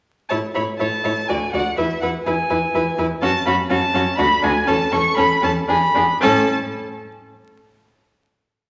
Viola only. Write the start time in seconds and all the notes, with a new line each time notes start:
0.31 E4
0.55 E4
0.79 E4
1.04 E4
1.29 F#4
1.53 F#4
1.78 E4
2.02 E4
2.26 E4
2.50 E4
2.75 E4
2.99 E4
3.22 C#4
3.46 C#4
3.70 C#4
3.94 C#4
4.18 D4
4.42 D4
4.67 C#4
4.92 C#4
5.17 C#4
5.42 C#4
5.68 D4
5.95 D4
6.21 C#4